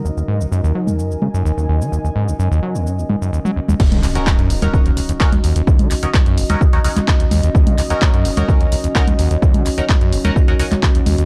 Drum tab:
CC |----------------|----------------|x---------------|----------------|
HH |----------------|----------------|-xox-xox-xox-xox|-xox-xox-xox-xox|
SH |xx-xxx-xxx-xxx-x|xx-xxx-xxx-xxx-x|x-xxx-xxx-xxx-xx|x-xxx-xxx-xxx-xx|
CP |----------------|----------------|--x-x-------x---|--x-x------xx---|
CG |-------O--O-----|----------O--O-O|-O-----O-----O--|-O-----O---O--O-|
BD |----------------|----------------|o---o---o---o---|o---o---o---o---|

CC |----------------|----------------|
HH |-xox-xox-xox-xox|-xox-xox-xox-xox|
SH |x-xxx-xxx-xxx-xx|x-xxx-xxx-xxx-xx|
CP |--x-x-------x---|--x-x------xx---|
CG |-O-----O-----O--|-O-----O---O--O-|
BD |o---o---o---o---|o---o---o---o---|